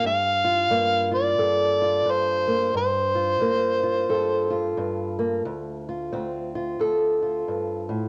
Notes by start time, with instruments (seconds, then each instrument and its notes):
0.04 steel-string acoustic guitar G2, harmonica F5
0.45 steel-string acoustic guitar F4
0.70 steel-string acoustic guitar G2 A#3
1.12 steel-string acoustic guitar F4, harmonica D5
1.38 steel-string acoustic guitar G2 A4
1.82 steel-string acoustic guitar F4
2.06 steel-string acoustic guitar G2
2.11 harmonica C5
2.48 steel-string acoustic guitar A#3
2.74 steel-string acoustic guitar G2, harmonica C5
3.15 steel-string acoustic guitar F4
3.40 steel-string acoustic guitar G2 A#3
3.83 steel-string acoustic guitar F4
4.09 steel-string acoustic guitar G2 A4
4.50 steel-string acoustic guitar F4
4.77 steel-string acoustic guitar G2
5.19 steel-string acoustic guitar A#3
5.45 steel-string acoustic guitar D2
5.89 steel-string acoustic guitar F4
6.12 steel-string acoustic guitar D2 C4
6.55 steel-string acoustic guitar F4
6.79 steel-string acoustic guitar D2 A4
7.22 steel-string acoustic guitar F4
7.48 steel-string acoustic guitar G2
7.89 steel-string acoustic guitar A2